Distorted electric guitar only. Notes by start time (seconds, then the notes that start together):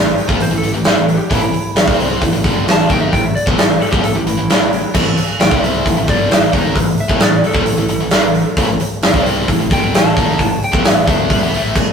Already playing: A2 E3
0.28 C3 G3
0.39 A2 E3
0.51 A2 E3
0.62 A2 E3
0.74 A2 E3
0.85 A2 E3
0.96 A2 E3
1.30 A2 E3
1.42 A2 E3
1.53 muted distorted electric guitar stroke
1.76 A2 E3
1.88 C3 G3 C4
2.22 A2 E3
2.33 A2 E3
2.44 G2 D3 G3
2.67 A2 E3
2.89 D#3 A#3 D#4
3.13 A2 E3
3.46 A2 E3
3.59 A2 E3
3.91 C3 G3
4.04 A2 E3
4.16 A2 E3
4.27 A2 E3
4.38 A2 E3
4.50 A2 E3
4.61 A2 E3
4.94 A2 E3
5.06 A2 E3
5.18 muted distorted electric guitar stroke
5.40 A2 E3
5.51 C3 G3 C4
5.85 A2 E3
5.97 A2 E3
6.08 G2 D3 G3
6.30 A2 E3
6.52 D#3 A#3 D#4
6.76 A2 E3
7.09 A2 E3
7.21 A2 E3
7.54 C3 G3
7.65 A2 E3
7.78 A2 E3
7.89 A2 E3
8.01 A2 E3
8.12 A2 E3
8.25 A2 E3
8.58 A2 E3
8.69 A2 E3
8.81 muted distorted electric guitar stroke
9.03 A2 E3
9.14 C3 G3 C4
9.49 A2 E3
9.59 A2 E3
9.70 G2 D3 G3
9.94 A2 E3
10.17 D#3 A#3 D#4
10.40 A2 E3
10.72 A2 E3
10.85 A2 E3
11.07 D3 A3 D4
11.29 G3 D4
11.41 E3 B3
11.52 A2 E3 A3